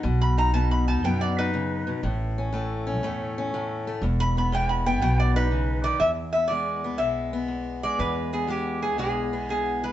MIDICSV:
0, 0, Header, 1, 4, 480
1, 0, Start_track
1, 0, Key_signature, 4, "major"
1, 0, Tempo, 497925
1, 32, Time_signature, 4, 2, 24, 8
1, 9567, End_track
2, 0, Start_track
2, 0, Title_t, "Resonator guitar played with a steel bar"
2, 0, Program_c, 0, 25
2, 207, Note_on_c, 0, 83, 99
2, 355, Note_off_c, 0, 83, 0
2, 369, Note_on_c, 0, 82, 88
2, 514, Note_off_c, 0, 82, 0
2, 518, Note_on_c, 0, 81, 96
2, 670, Note_off_c, 0, 81, 0
2, 687, Note_on_c, 0, 83, 90
2, 835, Note_off_c, 0, 83, 0
2, 847, Note_on_c, 0, 81, 86
2, 995, Note_off_c, 0, 81, 0
2, 1008, Note_on_c, 0, 79, 104
2, 1156, Note_off_c, 0, 79, 0
2, 1166, Note_on_c, 0, 74, 90
2, 1315, Note_off_c, 0, 74, 0
2, 1335, Note_on_c, 0, 71, 102
2, 2254, Note_off_c, 0, 71, 0
2, 4050, Note_on_c, 0, 83, 108
2, 4194, Note_off_c, 0, 83, 0
2, 4224, Note_on_c, 0, 83, 86
2, 4361, Note_off_c, 0, 83, 0
2, 4382, Note_on_c, 0, 79, 96
2, 4520, Note_off_c, 0, 79, 0
2, 4522, Note_on_c, 0, 83, 83
2, 4669, Note_off_c, 0, 83, 0
2, 4689, Note_on_c, 0, 79, 100
2, 4830, Note_off_c, 0, 79, 0
2, 4842, Note_on_c, 0, 79, 101
2, 4989, Note_off_c, 0, 79, 0
2, 5009, Note_on_c, 0, 74, 91
2, 5152, Note_off_c, 0, 74, 0
2, 5168, Note_on_c, 0, 71, 105
2, 5627, Note_on_c, 0, 74, 107
2, 5777, Note_off_c, 0, 71, 0
2, 5781, Note_on_c, 0, 76, 103
2, 5788, Note_off_c, 0, 74, 0
2, 5869, Note_off_c, 0, 76, 0
2, 6098, Note_on_c, 0, 76, 92
2, 6243, Note_on_c, 0, 74, 89
2, 6264, Note_off_c, 0, 76, 0
2, 6729, Note_on_c, 0, 76, 95
2, 6748, Note_off_c, 0, 74, 0
2, 7547, Note_off_c, 0, 76, 0
2, 7551, Note_on_c, 0, 74, 99
2, 7709, Note_on_c, 0, 71, 92
2, 7711, Note_off_c, 0, 74, 0
2, 8008, Note_off_c, 0, 71, 0
2, 8033, Note_on_c, 0, 68, 78
2, 8192, Note_off_c, 0, 68, 0
2, 8198, Note_on_c, 0, 67, 85
2, 8502, Note_off_c, 0, 67, 0
2, 8506, Note_on_c, 0, 68, 77
2, 8655, Note_off_c, 0, 68, 0
2, 8667, Note_on_c, 0, 68, 84
2, 9148, Note_off_c, 0, 68, 0
2, 9160, Note_on_c, 0, 68, 84
2, 9483, Note_on_c, 0, 71, 90
2, 9488, Note_off_c, 0, 68, 0
2, 9567, Note_off_c, 0, 71, 0
2, 9567, End_track
3, 0, Start_track
3, 0, Title_t, "Steel-string acoustic guitar"
3, 0, Program_c, 1, 25
3, 32, Note_on_c, 1, 47, 86
3, 362, Note_on_c, 1, 63, 59
3, 509, Note_off_c, 1, 47, 0
3, 520, Note_on_c, 1, 47, 75
3, 524, Note_on_c, 1, 59, 58
3, 834, Note_off_c, 1, 63, 0
3, 846, Note_on_c, 1, 63, 64
3, 992, Note_off_c, 1, 47, 0
3, 999, Note_off_c, 1, 59, 0
3, 1004, Note_on_c, 1, 47, 76
3, 1009, Note_on_c, 1, 59, 67
3, 1321, Note_off_c, 1, 63, 0
3, 1336, Note_on_c, 1, 63, 64
3, 1478, Note_off_c, 1, 47, 0
3, 1482, Note_on_c, 1, 49, 69
3, 1798, Note_off_c, 1, 49, 0
3, 1802, Note_on_c, 1, 47, 71
3, 1941, Note_off_c, 1, 59, 0
3, 1943, Note_off_c, 1, 63, 0
3, 1955, Note_off_c, 1, 47, 0
3, 1961, Note_on_c, 1, 45, 83
3, 2295, Note_on_c, 1, 61, 58
3, 2423, Note_off_c, 1, 45, 0
3, 2435, Note_on_c, 1, 45, 74
3, 2445, Note_on_c, 1, 57, 60
3, 2753, Note_off_c, 1, 61, 0
3, 2764, Note_on_c, 1, 61, 67
3, 2910, Note_off_c, 1, 45, 0
3, 2917, Note_off_c, 1, 57, 0
3, 2922, Note_on_c, 1, 45, 88
3, 2931, Note_on_c, 1, 57, 71
3, 3238, Note_off_c, 1, 61, 0
3, 3259, Note_on_c, 1, 61, 68
3, 3395, Note_off_c, 1, 45, 0
3, 3412, Note_on_c, 1, 45, 77
3, 3722, Note_off_c, 1, 57, 0
3, 3734, Note_on_c, 1, 57, 62
3, 3860, Note_off_c, 1, 57, 0
3, 3862, Note_off_c, 1, 61, 0
3, 3879, Note_off_c, 1, 45, 0
3, 3884, Note_on_c, 1, 40, 88
3, 4214, Note_on_c, 1, 59, 57
3, 4348, Note_off_c, 1, 40, 0
3, 4360, Note_on_c, 1, 40, 77
3, 4370, Note_on_c, 1, 56, 61
3, 4681, Note_off_c, 1, 59, 0
3, 4691, Note_on_c, 1, 59, 70
3, 4818, Note_off_c, 1, 56, 0
3, 4832, Note_off_c, 1, 40, 0
3, 4834, Note_on_c, 1, 47, 85
3, 5159, Note_off_c, 1, 59, 0
3, 5167, Note_on_c, 1, 63, 68
3, 5308, Note_off_c, 1, 47, 0
3, 5312, Note_on_c, 1, 49, 62
3, 5632, Note_off_c, 1, 49, 0
3, 5633, Note_on_c, 1, 51, 74
3, 5775, Note_off_c, 1, 63, 0
3, 5786, Note_on_c, 1, 40, 73
3, 5787, Note_off_c, 1, 51, 0
3, 6124, Note_on_c, 1, 59, 54
3, 6267, Note_off_c, 1, 40, 0
3, 6271, Note_on_c, 1, 40, 69
3, 6277, Note_on_c, 1, 56, 54
3, 6593, Note_off_c, 1, 59, 0
3, 6596, Note_on_c, 1, 59, 60
3, 6734, Note_off_c, 1, 40, 0
3, 6738, Note_on_c, 1, 40, 77
3, 6740, Note_off_c, 1, 56, 0
3, 6744, Note_on_c, 1, 56, 58
3, 7063, Note_off_c, 1, 59, 0
3, 7067, Note_on_c, 1, 59, 65
3, 7209, Note_off_c, 1, 40, 0
3, 7212, Note_on_c, 1, 40, 71
3, 7551, Note_off_c, 1, 56, 0
3, 7555, Note_on_c, 1, 56, 60
3, 7699, Note_off_c, 1, 40, 0
3, 7703, Note_on_c, 1, 40, 76
3, 8025, Note_off_c, 1, 59, 0
3, 8029, Note_on_c, 1, 59, 58
3, 8166, Note_off_c, 1, 40, 0
3, 8170, Note_on_c, 1, 40, 74
3, 8174, Note_off_c, 1, 56, 0
3, 8178, Note_on_c, 1, 56, 60
3, 8501, Note_off_c, 1, 59, 0
3, 8505, Note_on_c, 1, 59, 58
3, 8655, Note_off_c, 1, 40, 0
3, 8659, Note_on_c, 1, 40, 82
3, 8662, Note_off_c, 1, 56, 0
3, 8666, Note_on_c, 1, 56, 68
3, 8990, Note_off_c, 1, 59, 0
3, 8994, Note_on_c, 1, 59, 62
3, 9146, Note_off_c, 1, 40, 0
3, 9150, Note_on_c, 1, 40, 72
3, 9476, Note_off_c, 1, 56, 0
3, 9480, Note_on_c, 1, 56, 59
3, 9567, Note_off_c, 1, 40, 0
3, 9567, Note_off_c, 1, 56, 0
3, 9567, Note_off_c, 1, 59, 0
3, 9567, End_track
4, 0, Start_track
4, 0, Title_t, "Upright bass"
4, 0, Program_c, 2, 32
4, 35, Note_on_c, 2, 35, 115
4, 994, Note_off_c, 2, 35, 0
4, 994, Note_on_c, 2, 42, 103
4, 1843, Note_off_c, 2, 42, 0
4, 1957, Note_on_c, 2, 33, 107
4, 2912, Note_off_c, 2, 33, 0
4, 2912, Note_on_c, 2, 40, 111
4, 3759, Note_off_c, 2, 40, 0
4, 3871, Note_on_c, 2, 28, 112
4, 4827, Note_off_c, 2, 28, 0
4, 4827, Note_on_c, 2, 35, 110
4, 5676, Note_off_c, 2, 35, 0
4, 5781, Note_on_c, 2, 40, 109
4, 6735, Note_off_c, 2, 40, 0
4, 6735, Note_on_c, 2, 35, 106
4, 7590, Note_off_c, 2, 35, 0
4, 7703, Note_on_c, 2, 40, 110
4, 8666, Note_off_c, 2, 40, 0
4, 8666, Note_on_c, 2, 35, 94
4, 9520, Note_off_c, 2, 35, 0
4, 9567, End_track
0, 0, End_of_file